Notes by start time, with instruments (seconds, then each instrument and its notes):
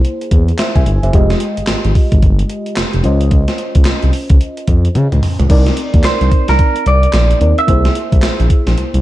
Already playing: fm electric piano A#3 E4 G#4 C5
0.05 closed hi-hat
0.21 closed hi-hat
0.31 analog synth bass E2, kick, closed hi-hat
0.48 closed hi-hat
0.58 fm electric piano C5 E5, snare, clap, closed hi-hat
0.76 analog synth bass C2, fm electric piano E5 G#5, kick, closed hi-hat
0.86 analog synth bass G1, closed hi-hat
1.03 analog synth bass F#1, fm electric piano C5 E5, closed hi-hat
1.13 analog synth bass F1, fm electric piano G#3 F4 G4 D#5, kick, closed hi-hat
1.30 snare, closed hi-hat
1.40 closed hi-hat
1.57 analog synth bass G#1, closed hi-hat
1.67 analog synth bass G#1, snare, clap, closed hi-hat
1.85 analog synth bass G#1, closed hi-hat
1.95 kick, open hi-hat
2.12 analog synth bass G#1, kick, closed hi-hat
2.22 analog synth bass G1, kick, closed hi-hat
2.39 closed hi-hat
2.50 closed hi-hat
2.66 closed hi-hat
2.76 analog synth bass F1, snare, clap, closed hi-hat
2.93 analog synth bass F1, closed hi-hat
3.03 analog synth bass C#2, fm electric piano C#4 F4 C5 D#5, closed hi-hat
3.21 closed hi-hat
3.31 kick, closed hi-hat
3.48 snare, closed hi-hat
3.58 closed hi-hat
3.75 analog synth bass C#2, kick, closed hi-hat
3.85 analog synth bass C2, snare, clap, closed hi-hat
4.03 analog synth bass C2, closed hi-hat
4.13 open hi-hat
4.30 analog synth bass C#2, kick, closed hi-hat
4.41 closed hi-hat
4.57 closed hi-hat
4.67 analog synth bass F2, kick, closed hi-hat
4.85 closed hi-hat
4.95 analog synth bass C#3, closed hi-hat, high tom
5.12 analog synth bass C#2, closed hi-hat, mid tom
5.23 mid tom, open hi-hat
5.39 analog synth bass C#2, closed hi-hat, floor tom
5.49 analog synth bass C2, fm electric piano C4 D#4 A#4 D5, kick, closed hi-hat, crash
5.66 snare, closed hi-hat
5.77 closed hi-hat
5.94 analog synth bass D#2, kick, closed hi-hat
6.04 analog synth bass C2, clean electric guitar C5, snare, clap, closed hi-hat
6.21 analog synth bass C2, closed hi-hat
6.32 kick, closed hi-hat
6.48 analog synth bass C2, clean electric guitar A#4, snare, closed hi-hat
6.59 kick, closed hi-hat
6.76 closed hi-hat
6.86 analog synth bass C2, clean electric guitar D5, closed hi-hat
7.03 closed hi-hat
7.13 analog synth bass A#1, snare, clap, closed hi-hat
7.31 closed hi-hat
7.40 analog synth bass D#2, fm electric piano C4 D#4 A#4 D5, closed hi-hat
7.58 clean electric guitar E5, closed hi-hat
7.67 analog synth bass C2, fm electric piano A#3 E4 G#4 C5, kick, closed hi-hat
7.85 snare, closed hi-hat
7.95 closed hi-hat
8.12 analog synth bass C2, kick, closed hi-hat
8.22 analog synth bass A#1, snare, clap, closed hi-hat
8.40 analog synth bass A#1, closed hi-hat
8.50 kick, closed hi-hat
8.67 analog synth bass A#1, snare, closed hi-hat
8.77 analog synth bass C2, closed hi-hat
8.94 analog synth bass C2, closed hi-hat